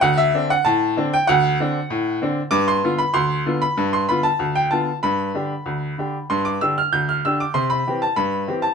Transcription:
X:1
M:2/4
L:1/16
Q:1/4=96
K:Gmix
V:1 name="Upright piano"
^f e2 f a3 g | ^f8 | d' c'2 b c'3 b- | b c' b a2 g a2 |
b8 | c' d' e' f' g' f' e' d' | c' b2 a b3 a |]
V:2 name="Upright piano" clef=bass
D,,2 [D,CD]2 A,,2 [D,CD]2 | D,,2 [D,CD]2 A,,2 [D,CD]2 | G,,2 [D,B,F]2 D,,2 [D,B,F]2 | G,,2 [D,B,F]2 D,,2 [D,B,F]2 |
G,,2 [D,DG]2 D,,2 [D,DG]2 | G,,2 [D,DG]2 D,,2 [D,DG]2 | C,2 [E,CG]2 G,,2 [E,CG]2 |]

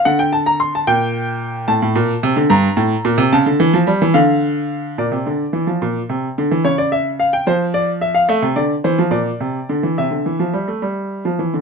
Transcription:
X:1
M:6/8
L:1/16
Q:3/8=73
K:Dphr
V:1 name="Grand piano"
^f g a b c' a g6 | a6 b6 | a6 f6 | d12 |
^c d =e2 f g =c2 d2 e f | [K:Cmix] e2 d2 c2 d6 | e8- e2 z2 |]
V:2 name="Grand piano" clef=bass
D,6 B,,6 | A,, A,, B,,2 C, D, G,,2 A,,2 B,, C, | ^C, D, =E, F, G, E, D,6 | B,, C, D,2 =E, F, B,,2 C,2 D, E, |
^C,6 F,6 | [K:Cmix] A, C, D,2 E, F, B,,2 C,2 D, E, | C, D, E, F, G, A, G,3 F, E, D, |]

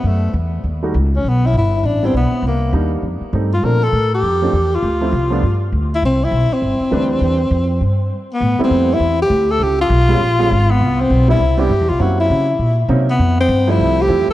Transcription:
X:1
M:4/4
L:1/8
Q:"Swing" 1/4=201
K:C
V:1 name="Tenor saxophone"
A,2 z4 z ^C | B, E E2 D C B,2 | _B,2 z4 z F | _B A2 G4 F- |
F4- F z2 E | C E2 C4- C- | C6 z B,- | B, C2 E2 G2 A |
G F6 _C- | _C =C2 E2 G2 F | ^F E4 z2 B,- | B, C2 E2 G2 A |]
V:2 name="Upright piano"
z4 z [G,A,^D^F] z2 | z4 z [G,B,DE] z2 | z2 [G,_B,D_E]2 z2 [G,A,CE] z | [F,A,CD] z4 [F,A,CD] z2 |
z [F,A,CE] z [F,A,B,D] z4 | z6 [E,G,DB]2- | [E,G,DB] z6 z | z [G,A,B,CE]3 z4 |
z3 [G,_A,_C_DF] z [G,A,CDF] z2 | z3 [G,B,CDE] z [G,B,CDE] z2 | [^F,^A,^B,^CE]3 z3 [F,A,B,C_E] z | z3 [F,G,A,CE]3 [F,G,A,CE] z |]
V:3 name="Upright bass" clef=bass
^F,,2 E,,2 ^D,,2 ^C,,2 | B,,,2 G,,,2 A,,,2 B,,, z | C,,2 _E,,2 F,, z G,,2 | _B,,2 A,,2 F,,2 E,,2 |
D,,2 C,,2 G,,2 D,,2 | C,,2 B,,, z G,,, z D,,2 | E,,2 F,,2 G,,2 z2 | A,, z F,,2 E,,2 D,,2 |
_D,,2 _C,,2 _B,,,2 _A,,,2 | C,,2 B,,,2 C,,2 (3G,, E,, C,, | ^F,,2 ^C,2 ^A,,2 ^B,,2 | F,,2 G,,2 C,,2 E,, z |]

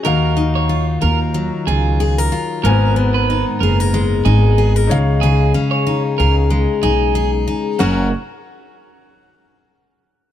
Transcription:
X:1
M:4/4
L:1/16
Q:"Swing 16ths" 1/4=93
K:F#
V:1 name="Clean electric guitar"
A2 z c2 z A z3 G3 z3 | A2 z B2 z A z3 G3 z3 | G2 z c2 z A z3 G3 z3 | F2 z12 z2 |]
V:2 name="Grand piano"
[DFe]16 | [A,B,Ag]12- [A,B,Ag]2 [Dce]2- | [Dce]12- [Dce]2 z2 | [CAf]2 z12 z2 |]
V:3 name="Steel-string acoustic guitar"
[D,A]2 D2 E2 A2 F,2 E2 G A E2 | [G,,A]2 B,2 D2 G A G,2 D2 G A C,2 | [C,G]2 C2 D2 G2 G,2 D2 G2 D2 | [F,CFA]2 z12 z2 |]
V:4 name="Upright bass" clef=bass
D,,6 D,,3 z C,,4 z2 | G,,,4- G,,, z F,,,4 G,,,4 C,,2- | C,,2 z4 C,,3 z B,,,4 z2 | F,,,2 z12 z2 |]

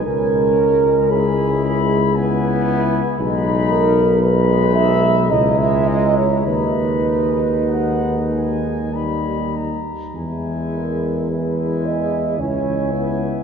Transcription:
X:1
M:3/4
L:1/16
Q:1/4=55
K:G#m
V:1 name="Trumpet section"
g2 a2 b2 b2 g4 | b4 b4 a4 | b4 f2 g2 b2 a2 | g4 g4 g4 |]
V:2 name="French horn section"
A4 G6 z2 | z2 A2 B2 e2 d e d c | B8 z4 | z2 A2 B2 d2 c4 |]
V:3 name="Trombone section"
C4 E4 E4 | D4 D4 E4 | D8 D2 z2 | E4 E4 E4 |]
V:4 name="Trombone" clef=bass
G,8 B,4 | G,4 G,4 G,4 | G,8 =G,2 z2 | G,4 G,4 C2 B,2 |]
V:5 name="Tuba" clef=bass
C,,12 | B,,,8 C,,4 | D,,8- D,,2 z2 | E,,8 C,,4 |]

